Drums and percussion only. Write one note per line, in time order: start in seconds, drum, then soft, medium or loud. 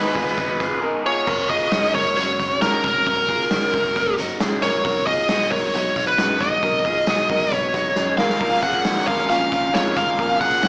0.15 kick loud
0.15 hi-hat pedal medium
0.15 open hi-hat medium
0.15 tambourine soft
0.38 kick medium
0.38 hi-hat pedal medium
0.38 open hi-hat loud
0.38 tambourine soft
0.60 kick loud
0.60 hi-hat pedal medium
0.60 open hi-hat medium
0.60 tambourine soft
1.27 kick loud
1.27 crash loud
1.50 kick medium
1.50 hi-hat pedal medium
1.50 open hi-hat medium
1.50 tambourine medium
1.71 snare loud
1.71 hi-hat pedal medium
1.71 open hi-hat loud
1.71 tambourine medium
1.95 kick loud
1.95 hi-hat pedal medium
1.95 open hi-hat medium
1.95 tambourine soft
2.17 hi-hat pedal medium
2.17 open hi-hat medium
2.17 tambourine soft
2.39 kick medium
2.39 snare soft
2.39 hi-hat pedal medium
2.39 open hi-hat medium
2.39 tambourine medium
2.62 snare loud
2.62 hi-hat pedal medium
2.62 open hi-hat medium
2.62 tambourine medium
2.84 kick medium
2.84 hi-hat pedal medium
2.84 open hi-hat medium
2.84 tambourine soft
3.07 kick loud
3.07 hi-hat pedal medium
3.07 open hi-hat medium
3.07 tambourine soft
3.29 kick medium
3.29 hi-hat pedal medium
3.29 open hi-hat medium
3.29 tambourine medium
3.51 snare loud
3.51 hi-hat pedal medium
3.51 open hi-hat loud
3.51 tambourine medium
3.74 kick loud
3.74 hi-hat pedal medium
3.74 open hi-hat medium
3.96 kick medium
3.96 hi-hat pedal medium
3.96 open hi-hat medium
3.96 tambourine soft
4.18 hi-hat pedal medium
4.18 open hi-hat medium
4.18 tambourine medium
4.40 snare loud
4.40 hi-hat pedal medium
4.40 open hi-hat medium
4.40 tambourine medium
4.62 hi-hat pedal medium
4.62 open hi-hat medium
4.62 tambourine soft
4.85 kick loud
4.85 hi-hat pedal medium
4.85 open hi-hat loud
4.85 tambourine soft
5.07 kick medium
5.07 hi-hat pedal medium
5.07 open hi-hat medium
5.07 tambourine medium
5.29 snare loud
5.29 hi-hat pedal medium
5.29 open hi-hat loud
5.29 tambourine medium
5.51 kick loud
5.51 hi-hat pedal medium
5.51 open hi-hat medium
5.51 tambourine soft
5.73 hi-hat pedal medium
5.73 open hi-hat medium
5.73 tambourine soft
5.96 kick loud
5.96 hi-hat pedal medium
5.96 open hi-hat medium
5.96 tambourine soft
6.18 snare loud
6.18 hi-hat pedal medium
6.18 open hi-hat medium
6.18 tambourine medium
6.40 kick medium
6.40 hi-hat pedal medium
6.40 open hi-hat medium
6.40 tambourine soft
6.63 kick loud
6.63 hi-hat pedal medium
6.63 open hi-hat medium
6.63 tambourine soft
6.85 kick medium
6.85 hi-hat pedal medium
6.85 open hi-hat medium
6.85 tambourine medium
7.06 snare loud
7.06 hi-hat pedal medium
7.06 open hi-hat loud
7.06 tambourine medium
7.29 kick loud
7.29 hi-hat pedal medium
7.29 open hi-hat medium
7.29 tambourine soft
7.51 kick medium
7.51 hi-hat pedal medium
7.51 open hi-hat loud
7.51 tambourine medium
7.74 kick loud
7.74 snare soft
7.74 hi-hat pedal medium
7.74 open hi-hat medium
7.74 tambourine soft
7.96 snare medium
7.96 tambourine medium
8.18 snare medium
8.18 tambourine soft
8.29 snare loud
8.41 kick loud
8.41 hi-hat pedal medium
8.41 open hi-hat loud
8.63 kick medium
8.63 hi-hat pedal medium
8.63 open hi-hat medium
8.63 tambourine medium
8.85 snare loud
8.85 hi-hat pedal medium
8.85 open hi-hat loud
8.85 tambourine medium
9.08 kick loud
9.08 hi-hat pedal medium
9.08 open hi-hat medium
9.29 hi-hat pedal medium
9.29 open hi-hat loud
9.29 tambourine soft
9.52 kick loud
9.52 hi-hat pedal medium
9.52 open hi-hat medium
9.52 tambourine medium
9.75 snare loud
9.75 hi-hat pedal medium
9.75 open hi-hat medium
9.75 tambourine medium
9.96 kick medium
9.96 hi-hat pedal medium
9.96 open hi-hat medium
9.96 tambourine medium
10.19 kick loud
10.19 hi-hat pedal medium
10.19 open hi-hat medium
10.41 kick medium
10.41 hi-hat pedal medium
10.41 open hi-hat medium
10.41 tambourine medium
10.63 snare loud
10.63 hi-hat pedal medium
10.63 open hi-hat loud
10.63 tambourine medium